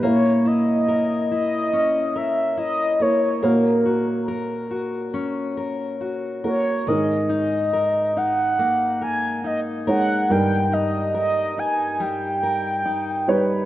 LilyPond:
<<
  \new Staff \with { instrumentName = "Soft synth lead" } { \time 4/4 \key fis \mixolydian \tempo 4 = 70 cis''8 dis''4 dis''4 e''8 dis''8 cis''8 | ais'4. r2 cis''8 | dis''8 dis''4 fis''4 gis''8 dis''8 fis''8 | g''8 dis''8 dis''8 gis''8 g''4. b'8 | }
  \new Staff \with { instrumentName = "Steel-string acoustic guitar" } { \time 4/4 \key fis \mixolydian ais8 e'8 ais'8 e'8 cis'8 ais'8 e'8 ais'8 | ais8 fis'8 ais'8 fis'8 cis'8 ais'8 fis'8 ais'8 | gis8 dis'8 ais'8 dis'8 ais8 ais'8 dis'8 ais'8 | g,8 dis'8 ais'8 dis'8 g8 ais'8 dis'4 | }
  \new Staff \with { instrumentName = "Upright piano" } { \time 4/4 \key fis \mixolydian <ais e' cis''>2 r4. <ais e' cis''>8 | <ais fis' cis''>2 r4. <ais fis' ais'>8 | <gis dis' ais'>2 r4. <gis dis' cis''>8 | <g dis' ais'>2 r4. <g dis' cis''>8 | }
  \new Staff \with { instrumentName = "Upright piano" } { \clef bass \time 4/4 \key fis \mixolydian ais,1 | ais,1 | <gis, dis>1 | g,1 | }
>>